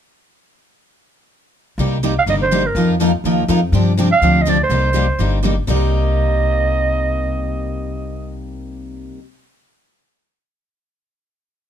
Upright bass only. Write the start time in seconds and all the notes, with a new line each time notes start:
1.78 C2
2.26 G1
2.75 F2
3.24 D#2
3.48 F2
3.72 G2
4.21 D2
4.70 C2
5.19 G1
5.68 C2